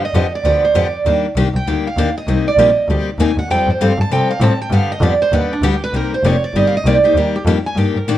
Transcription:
0.05 D#5
0.13 F2 D3 F3 B3 D4 G4
0.35 D5
0.44 D2 D3 F3 B3 D4 G4
0.64 C5
0.75 F2 D3 F3 B3 D4 G4 D5
1.05 D#2 D#3 G3 A#3 D4 G4
1.36 C2 D#3 G3 A#3 D4 G4
1.54 C2 G5
1.66 D2 D#3 G3 A#3 D4 G4
1.87 F5
1.96 D#2 D#3 G3 A#3 D4 G4
2.17 D#5
2.27 C2 C3 G3 A#3 D#4 G4
2.48 D5
2.57 A#1 C3 G3 A#3 D#4 G4 D#5
2.88 D2 C3 G3 A#3 D#4 G4
3.19 D#2 C3 G3 A#3 D#4 G4 G#5
3.36 D#2 F#5
3.48 F2 F3 G3 C4 G4 A4 G5
3.67 F2 C5
3.79 G2 F3 G3 C4 G4 A4
3.83 F5
3.97 G2 A5
4.09 C3 F3 G3 C4 G4 A4 G5
4.30 F5
4.40 A2 F3 G3 C4 G4 A4 A5
4.62 G5
4.70 G2 D3 G3 B3 D4 G4 F5
4.92 D#5
5.00 F2 D3 G3 B3 D4 G4 D5
5.22 C5
5.31 D#2 D3 G3 B3 D4 G4 B4
5.53 D4
5.61 D2 D3 G3 B3 D4 G4
5.83 B4
5.92 C2 C3 G3 A#3 D#4 G4 A#4
6.14 C5
6.23 F1 C3 G3 A#3 D#4 G4 C#5
6.44 D5
6.54 G1 C3 G3 A#3 D#4 G4 D#5
6.67 F5
6.77 D#5
6.84 C2 C3 G3 A#3 D#4 G4 D5
7.04 A#3 D#4 G4 C5
7.14 D#2 D#3 G3 A#3 D4 G4
7.18 A#4
7.36 G4
7.45 F2 D#3 G3 A#3 D4 G4
7.66 G#5
7.75 G2 D#3 G3 A#3 D4 G4 G5
7.94 G2 A#4
8.06 A2 D#3 G3 A#3 D4 G4 D5

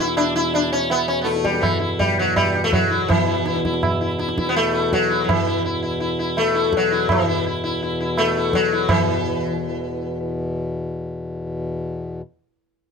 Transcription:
Already playing: E2 B2
0.00 E4
0.08 tabla te
0.17 D4, tabla na
0.36 E4
0.54 D4, tabla na
0.72 C#4
0.90 B3, tabla na
1.08 C#4
1.21 A3 B3
1.26 tabla te
1.36 tabla te
1.44 G3, tabla ke
1.54 tabla te
1.61 E3, tabla na, tabla ge
1.80 E4
1.99 G3, tabla tin, tabla ge
2.19 F#3
2.36 G3, tabla na, tabla ge
2.55 tabla te
2.64 A3
2.73 F#3, tabla tin, tabla ge
2.90 E4
3.08 E2 B2 E3, tabla na, tabla ge
3.27 E4
3.46 E4, tabla te
3.56 tabla te
3.65 E4, tabla ke
3.74 tabla te
3.83 E4, tabla na, tabla ge
4.01 E4
4.19 E4, tabla te
4.29 tabla te
4.38 E4, tabla ke
4.47 B3, tabla te
4.56 A3, tabla na
4.73 E4
4.93 F#3, tabla ke
5.10 E4
5.24 F#3
5.29 E3, tabla na, tabla ge
5.47 E4
5.65 E4
5.83 E4
6.00 E4
6.19 E4
6.37 A3, tabla na
6.55 E4
6.73 tabla ke
6.77 F#3
6.91 E4
7.09 E3, tabla na, tabla ge
7.28 E4
7.46 E4
7.64 E4
7.83 E4
8.00 E4
8.18 A3, tabla na
8.37 E4
8.53 F#3, tabla ke
8.73 E4
8.89 E2 B2 E3, tabla na, tabla ge

